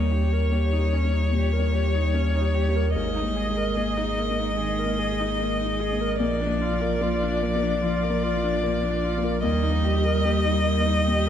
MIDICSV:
0, 0, Header, 1, 6, 480
1, 0, Start_track
1, 0, Tempo, 811908
1, 1748, Time_signature, 4, 2, 24, 8
1, 6676, End_track
2, 0, Start_track
2, 0, Title_t, "Violin"
2, 0, Program_c, 0, 40
2, 0, Note_on_c, 0, 73, 55
2, 1721, Note_off_c, 0, 73, 0
2, 1742, Note_on_c, 0, 75, 59
2, 3640, Note_off_c, 0, 75, 0
2, 3663, Note_on_c, 0, 74, 63
2, 5558, Note_off_c, 0, 74, 0
2, 5579, Note_on_c, 0, 75, 73
2, 6676, Note_off_c, 0, 75, 0
2, 6676, End_track
3, 0, Start_track
3, 0, Title_t, "Viola"
3, 0, Program_c, 1, 41
3, 0, Note_on_c, 1, 63, 45
3, 66, Note_on_c, 1, 67, 45
3, 75, Note_off_c, 1, 63, 0
3, 192, Note_on_c, 1, 70, 42
3, 201, Note_off_c, 1, 67, 0
3, 308, Note_on_c, 1, 67, 47
3, 317, Note_off_c, 1, 70, 0
3, 429, Note_on_c, 1, 63, 43
3, 438, Note_off_c, 1, 67, 0
3, 550, Note_on_c, 1, 61, 43
3, 559, Note_off_c, 1, 63, 0
3, 669, Note_on_c, 1, 63, 38
3, 678, Note_off_c, 1, 61, 0
3, 786, Note_off_c, 1, 63, 0
3, 789, Note_on_c, 1, 67, 52
3, 903, Note_on_c, 1, 70, 47
3, 912, Note_off_c, 1, 67, 0
3, 1026, Note_on_c, 1, 67, 42
3, 1035, Note_off_c, 1, 70, 0
3, 1148, Note_on_c, 1, 63, 43
3, 1157, Note_off_c, 1, 67, 0
3, 1268, Note_on_c, 1, 61, 49
3, 1276, Note_off_c, 1, 63, 0
3, 1389, Note_on_c, 1, 63, 45
3, 1398, Note_off_c, 1, 61, 0
3, 1505, Note_on_c, 1, 67, 54
3, 1514, Note_off_c, 1, 63, 0
3, 1630, Note_on_c, 1, 70, 44
3, 1639, Note_off_c, 1, 67, 0
3, 1743, Note_off_c, 1, 70, 0
3, 1746, Note_on_c, 1, 58, 54
3, 1866, Note_on_c, 1, 63, 48
3, 1875, Note_off_c, 1, 58, 0
3, 1986, Note_on_c, 1, 68, 44
3, 1995, Note_off_c, 1, 63, 0
3, 2107, Note_on_c, 1, 70, 50
3, 2116, Note_off_c, 1, 68, 0
3, 2225, Note_on_c, 1, 68, 47
3, 2234, Note_off_c, 1, 70, 0
3, 2347, Note_on_c, 1, 63, 52
3, 2356, Note_off_c, 1, 68, 0
3, 2473, Note_on_c, 1, 58, 46
3, 2482, Note_off_c, 1, 63, 0
3, 2594, Note_on_c, 1, 63, 51
3, 2603, Note_off_c, 1, 58, 0
3, 2704, Note_off_c, 1, 63, 0
3, 2708, Note_on_c, 1, 68, 54
3, 2830, Note_on_c, 1, 70, 48
3, 2839, Note_off_c, 1, 68, 0
3, 2949, Note_on_c, 1, 68, 52
3, 2958, Note_off_c, 1, 70, 0
3, 3073, Note_on_c, 1, 63, 46
3, 3082, Note_off_c, 1, 68, 0
3, 3194, Note_on_c, 1, 58, 48
3, 3203, Note_off_c, 1, 63, 0
3, 3310, Note_on_c, 1, 63, 49
3, 3319, Note_off_c, 1, 58, 0
3, 3427, Note_on_c, 1, 68, 54
3, 3436, Note_off_c, 1, 63, 0
3, 3550, Note_on_c, 1, 70, 55
3, 3559, Note_off_c, 1, 68, 0
3, 3665, Note_off_c, 1, 70, 0
3, 3668, Note_on_c, 1, 58, 54
3, 3789, Note_on_c, 1, 62, 52
3, 3798, Note_off_c, 1, 58, 0
3, 3909, Note_on_c, 1, 65, 54
3, 3918, Note_off_c, 1, 62, 0
3, 4027, Note_on_c, 1, 70, 54
3, 4036, Note_off_c, 1, 65, 0
3, 4145, Note_on_c, 1, 65, 55
3, 4154, Note_off_c, 1, 70, 0
3, 4269, Note_on_c, 1, 62, 57
3, 4278, Note_off_c, 1, 65, 0
3, 4390, Note_on_c, 1, 58, 55
3, 4399, Note_off_c, 1, 62, 0
3, 4507, Note_on_c, 1, 62, 58
3, 4516, Note_off_c, 1, 58, 0
3, 4626, Note_off_c, 1, 62, 0
3, 4630, Note_on_c, 1, 65, 64
3, 4750, Note_on_c, 1, 70, 62
3, 4759, Note_off_c, 1, 65, 0
3, 4867, Note_on_c, 1, 65, 60
3, 4876, Note_off_c, 1, 70, 0
3, 4988, Note_on_c, 1, 62, 53
3, 4997, Note_off_c, 1, 65, 0
3, 5104, Note_on_c, 1, 58, 61
3, 5113, Note_off_c, 1, 62, 0
3, 5223, Note_on_c, 1, 62, 53
3, 5231, Note_off_c, 1, 58, 0
3, 5342, Note_on_c, 1, 65, 61
3, 5351, Note_off_c, 1, 62, 0
3, 5460, Note_on_c, 1, 70, 54
3, 5469, Note_off_c, 1, 65, 0
3, 5570, Note_off_c, 1, 70, 0
3, 5574, Note_on_c, 1, 58, 63
3, 5693, Note_on_c, 1, 63, 61
3, 5702, Note_off_c, 1, 58, 0
3, 5819, Note_on_c, 1, 67, 56
3, 5828, Note_off_c, 1, 63, 0
3, 5940, Note_on_c, 1, 70, 66
3, 5949, Note_off_c, 1, 67, 0
3, 6058, Note_on_c, 1, 67, 60
3, 6067, Note_off_c, 1, 70, 0
3, 6180, Note_on_c, 1, 63, 57
3, 6189, Note_off_c, 1, 67, 0
3, 6300, Note_on_c, 1, 58, 62
3, 6309, Note_off_c, 1, 63, 0
3, 6419, Note_on_c, 1, 63, 56
3, 6427, Note_off_c, 1, 58, 0
3, 6541, Note_off_c, 1, 63, 0
3, 6545, Note_on_c, 1, 67, 71
3, 6671, Note_off_c, 1, 67, 0
3, 6676, End_track
4, 0, Start_track
4, 0, Title_t, "Felt piano"
4, 0, Program_c, 2, 0
4, 0, Control_c, 2, 64, 127
4, 0, Note_on_c, 2, 39, 47
4, 0, Note_on_c, 2, 58, 39
4, 144, Note_on_c, 2, 67, 36
4, 241, Note_off_c, 2, 58, 0
4, 302, Note_on_c, 2, 58, 41
4, 402, Note_off_c, 2, 67, 0
4, 462, Note_on_c, 2, 67, 42
4, 561, Note_off_c, 2, 58, 0
4, 619, Note_on_c, 2, 58, 36
4, 721, Note_off_c, 2, 67, 0
4, 762, Note_off_c, 2, 39, 0
4, 782, Note_on_c, 2, 46, 40
4, 880, Note_off_c, 2, 58, 0
4, 944, Note_on_c, 2, 58, 41
4, 1042, Note_off_c, 2, 46, 0
4, 1105, Note_on_c, 2, 67, 35
4, 1202, Note_off_c, 2, 58, 0
4, 1266, Note_on_c, 2, 58, 40
4, 1363, Note_off_c, 2, 67, 0
4, 1425, Note_on_c, 2, 67, 46
4, 1523, Note_off_c, 2, 58, 0
4, 1587, Note_on_c, 2, 58, 46
4, 1682, Note_off_c, 2, 67, 0
4, 1747, Note_off_c, 2, 58, 0
4, 1750, Note_on_c, 2, 44, 49
4, 1758, Control_c, 2, 64, 0
4, 1836, Control_c, 2, 64, 127
4, 1906, Note_on_c, 2, 58, 39
4, 2069, Note_on_c, 2, 68, 40
4, 2162, Note_off_c, 2, 58, 0
4, 2228, Note_on_c, 2, 58, 46
4, 2324, Note_off_c, 2, 68, 0
4, 2389, Note_on_c, 2, 68, 44
4, 2483, Note_off_c, 2, 58, 0
4, 2546, Note_on_c, 2, 58, 44
4, 2644, Note_off_c, 2, 68, 0
4, 2684, Note_off_c, 2, 44, 0
4, 2709, Note_on_c, 2, 51, 42
4, 2803, Note_off_c, 2, 58, 0
4, 2869, Note_on_c, 2, 58, 41
4, 2964, Note_off_c, 2, 51, 0
4, 3028, Note_on_c, 2, 68, 44
4, 3124, Note_off_c, 2, 58, 0
4, 3188, Note_on_c, 2, 58, 42
4, 3284, Note_off_c, 2, 68, 0
4, 3347, Note_on_c, 2, 68, 52
4, 3444, Note_off_c, 2, 58, 0
4, 3504, Note_on_c, 2, 58, 48
4, 3603, Note_off_c, 2, 68, 0
4, 3665, Note_off_c, 2, 58, 0
4, 3665, Note_on_c, 2, 46, 53
4, 3678, Control_c, 2, 64, 0
4, 3788, Control_c, 2, 64, 127
4, 3822, Note_on_c, 2, 58, 48
4, 3984, Note_on_c, 2, 65, 45
4, 4080, Note_off_c, 2, 58, 0
4, 4143, Note_on_c, 2, 58, 57
4, 4241, Note_off_c, 2, 65, 0
4, 4308, Note_on_c, 2, 65, 51
4, 4402, Note_off_c, 2, 58, 0
4, 4467, Note_on_c, 2, 58, 50
4, 4564, Note_off_c, 2, 65, 0
4, 4603, Note_off_c, 2, 46, 0
4, 4630, Note_on_c, 2, 53, 50
4, 4724, Note_off_c, 2, 58, 0
4, 4788, Note_on_c, 2, 58, 54
4, 4884, Note_off_c, 2, 53, 0
4, 4946, Note_on_c, 2, 65, 50
4, 5042, Note_off_c, 2, 58, 0
4, 5106, Note_on_c, 2, 58, 49
4, 5201, Note_off_c, 2, 65, 0
4, 5262, Note_on_c, 2, 65, 61
4, 5360, Note_off_c, 2, 58, 0
4, 5424, Note_on_c, 2, 58, 58
4, 5518, Note_off_c, 2, 65, 0
4, 5577, Note_on_c, 2, 39, 62
4, 5583, Note_off_c, 2, 58, 0
4, 5593, Control_c, 2, 64, 0
4, 5698, Control_c, 2, 64, 127
4, 5737, Note_on_c, 2, 58, 53
4, 5900, Note_on_c, 2, 67, 48
4, 5995, Note_off_c, 2, 58, 0
4, 6061, Note_on_c, 2, 58, 62
4, 6158, Note_off_c, 2, 67, 0
4, 6219, Note_on_c, 2, 67, 56
4, 6319, Note_off_c, 2, 58, 0
4, 6385, Note_on_c, 2, 58, 50
4, 6479, Note_off_c, 2, 67, 0
4, 6519, Note_off_c, 2, 39, 0
4, 6547, Note_on_c, 2, 46, 53
4, 6643, Note_off_c, 2, 58, 0
4, 6676, Note_off_c, 2, 46, 0
4, 6676, End_track
5, 0, Start_track
5, 0, Title_t, "Cello"
5, 0, Program_c, 3, 42
5, 0, Note_on_c, 3, 55, 48
5, 1745, Note_on_c, 3, 56, 56
5, 1754, Note_off_c, 3, 55, 0
5, 3668, Note_on_c, 3, 53, 73
5, 3676, Note_off_c, 3, 56, 0
5, 5576, Note_off_c, 3, 53, 0
5, 5579, Note_on_c, 3, 55, 76
5, 6676, Note_off_c, 3, 55, 0
5, 6676, End_track
6, 0, Start_track
6, 0, Title_t, "Sub bass"
6, 0, Program_c, 4, 38
6, 0, Note_on_c, 4, 39, 62
6, 1750, Note_on_c, 4, 32, 56
6, 1759, Note_off_c, 4, 39, 0
6, 3669, Note_on_c, 4, 34, 64
6, 3678, Note_off_c, 4, 32, 0
6, 5584, Note_on_c, 4, 39, 64
6, 5593, Note_off_c, 4, 34, 0
6, 6676, Note_off_c, 4, 39, 0
6, 6676, End_track
0, 0, End_of_file